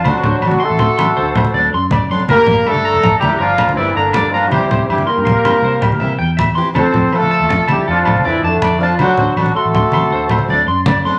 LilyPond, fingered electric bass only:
\new Staff \with { instrumentName = "Fingered electric bass" } { \clef bass \time 12/8 \key d \minor \tempo 4. = 107 d,16 r16 d8 a,,8 r16 a,,16 d,16 r16 a,,16 r16 d,8 r8 d,8 fis,4. | g,,16 r16 g,,8 g,8. g,,16 g,,16 r16 e,,16 r16 g,,8 r16 d,16 g,,8 g,,8 g,4 | c,16 r16 c8 g,8 r16 g,16 c,16 r16 g,16 r16 c,8 r8 c,8 e,4. | f,16 r16 f,8 f8. f,16 f,16 r16 d,16 r16 f,8 r16 c,16 f,8 f,8 f,4 |
d,16 r16 d8 a,,8 r16 a,,16 d,16 r16 a,,16 r16 d,8 r8 d,8 fis,4. | }